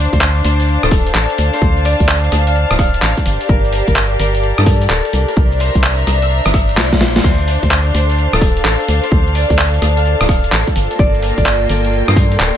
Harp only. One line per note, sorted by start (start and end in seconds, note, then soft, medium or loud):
0.00 0.12 C5 loud
0.00 0.88 D5 medium
0.00 0.44 E5 medium
0.13 0.44 C5 loud
0.45 1.53 C5 loud
0.84 1.15 A4 loud
1.15 3.35 A4 loud
1.53 3.51 C5 loud
1.85 3.70 D5 loud
2.47 2.78 F5 loud
2.79 4.45 F5 loud
3.49 3.88 A#4 medium
3.88 4.19 A#4 medium
4.20 4.64 A#4 loud
4.58 4.90 A4 loud
4.90 5.34 A4 loud
5.28 7.41 A#4 medium
5.60 7.24 C5 medium
6.22 6.54 E5 medium
6.54 8.26 E5 medium
7.24 7.62 C5 loud
7.63 7.94 C5 medium
7.95 9.03 C5 loud
8.33 8.65 A4 loud
8.65 10.85 A4 loud
9.03 11.01 C5 medium
9.35 10.99 D5 loud
9.97 10.29 F5 medium
10.29 11.95 F5 medium
10.99 11.37 D5 loud
11.38 11.69 D5 loud
11.70 12.57 D5 loud
12.08 12.40 C5 loud
12.40 12.57 C5 loud